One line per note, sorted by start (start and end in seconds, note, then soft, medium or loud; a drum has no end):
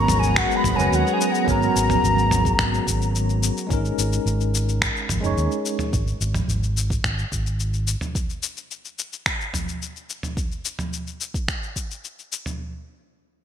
0.00 0.44 G#1 medium
0.00 0.73 F#3 medium
0.00 3.66 G#3 medium
0.00 0.75 B3 medium
0.00 3.66 B3 medium
0.00 0.76 C#4 medium
0.00 3.66 F#4 medium
0.00 0.77 A#4 medium
0.00 3.66 C#5 medium
0.00 3.66 A#5 medium
0.00 0.21 A#5 loud
0.08 mid tom medium
0.08 shaker medium
0.19 0.40 G#5 loud
0.19 shaker soft
0.36 0.58 F#5 loud
0.36 finger snap medium
0.36 kick loud
0.36 shaker soft
0.51 shaker soft
0.56 0.78 B5 loud
0.64 0.74 G#1 medium
0.64 kick medium
0.64 mid tom medium
0.64 shaker medium
0.75 0.88 F#1 medium
0.75 1.43 F#3 medium
0.75 1.44 B3 medium
0.75 0.97 G#5 loud
0.79 1.45 C#4 medium
0.79 1.46 B4 loud
0.79 shaker soft
0.92 1.02 D#2 loud
0.92 1.15 F#5 medium
0.92 shaker soft
1.07 shaker soft
1.13 1.34 G#5 medium
1.21 shaker medium
1.32 1.49 F#5 medium
1.32 shaker soft
1.44 1.67 G#1 loud
1.44 2.96 F#3 medium
1.44 2.97 B3 medium
1.44 2.98 C#4 medium
1.44 kick loud
1.48 2.99 A#4 medium
1.48 3.12 A#5 loud
1.48 shaker soft
1.62 shaker soft
1.76 1.95 G#1 loud
1.76 shaker medium
1.90 mid tom medium
1.90 shaker soft
2.03 2.52 G#1 medium
2.03 shaker soft
2.18 shaker soft
2.31 mid tom medium
2.31 shaker medium
2.45 kick medium
2.45 shaker soft
2.59 2.78 G#1 loud
2.59 finger snap medium
2.59 kick loud
2.59 shaker soft
2.74 shaker soft
2.87 3.49 G#1 medium
2.87 kick medium
2.87 shaker medium
3.02 shaker soft
3.15 shaker soft
3.29 shaker soft
3.43 shaker medium
3.57 shaker soft
3.67 3.89 G#1 loud
3.67 5.19 G#3 medium
3.67 5.20 C#4 medium
3.67 kick loud
3.71 5.21 D#4 medium
3.71 5.22 A#4 medium
3.71 shaker soft
3.85 shaker soft
3.98 4.17 G#1 medium
3.98 shaker medium
4.13 shaker soft
4.26 4.88 G#1 medium
4.26 shaker soft
4.41 shaker soft
4.54 shaker medium
4.69 shaker soft
4.82 finger snap medium
4.82 kick loud
4.82 shaker soft
4.96 shaker soft
5.09 5.19 G#1 medium
5.09 kick medium
5.09 mid tom medium
5.09 shaker medium
5.20 5.33 F#1 medium
5.20 5.88 G#3 medium
5.20 5.89 C#4 medium
5.20 shaker soft
5.25 5.90 D#4 medium
5.25 5.91 C#5 loud
5.37 5.47 D#2 medium
5.37 shaker soft
5.52 shaker soft
5.66 shaker medium
5.79 mid tom medium
5.79 shaker soft
5.93 6.12 G#1 medium
5.93 kick loud
5.93 shaker soft
6.07 shaker soft
6.21 6.39 G#1 medium
6.21 shaker medium
6.34 mid tom medium
6.34 shaker soft
6.48 6.97 G#1 medium
6.48 shaker soft
6.63 shaker soft
6.77 shaker medium
6.90 kick medium
6.90 shaker soft
7.04 7.23 G#1 medium
7.04 finger snap medium
7.04 kick loud
7.04 shaker soft
7.19 shaker soft
7.32 7.94 G#1 medium
7.32 kick medium
7.32 shaker medium
7.46 shaker soft
7.60 shaker soft
7.73 shaker soft
7.87 shaker medium
8.01 mid tom medium
8.01 shaker soft
8.15 kick loud
8.15 shaker soft
8.30 shaker soft
8.43 shaker medium
8.57 shaker soft
8.71 shaker soft
8.85 shaker soft
8.99 shaker medium
9.13 shaker soft
9.26 finger snap medium
9.26 kick loud
9.26 shaker soft
9.41 shaker soft
9.54 kick medium
9.54 mid tom medium
9.54 shaker medium
9.68 shaker soft
9.82 shaker soft
9.96 shaker soft
10.10 shaker medium
10.23 mid tom medium
10.23 shaker soft
10.37 kick loud
10.37 shaker soft
10.52 shaker soft
10.65 shaker medium
10.79 mid tom medium
10.79 shaker soft
10.93 shaker soft
11.07 shaker soft
11.21 shaker medium
11.34 kick medium
11.34 shaker soft
11.48 finger snap medium
11.48 kick loud
11.48 shaker soft
11.63 shaker soft
11.76 kick medium
11.76 shaker medium
11.91 shaker soft
12.05 shaker soft
12.19 shaker soft
12.32 shaker medium
12.46 mid tom soft
12.46 shaker soft